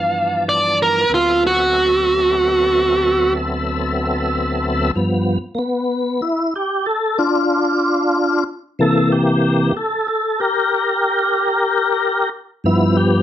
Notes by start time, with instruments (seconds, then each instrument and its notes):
Already playing: tonewheel organ G2 E3 F3 B3 D4 A5, lead electric guitar F5
0.49 lead electric guitar D5
0.83 lead electric guitar A#4
1.09 tonewheel organ D2 F#3 B3 C4 A4 E5
1.14 lead electric guitar F4
1.47 lead electric guitar F#4
4.95 tonewheel organ G2 F3 B3
5.55 tonewheel organ A#3 B3
6.22 tonewheel organ E4
6.56 tonewheel organ G4
6.86 tonewheel organ A4
7.18 tonewheel organ D4 F4
8.79 tonewheel organ C3 E3 A#3 A4
9.12 tonewheel organ G4
9.77 tonewheel organ A4
10.08 tonewheel organ A4
10.40 tonewheel organ G4 A#4
12.64 tonewheel organ G2 F3 B3 E4
12.97 tonewheel organ G4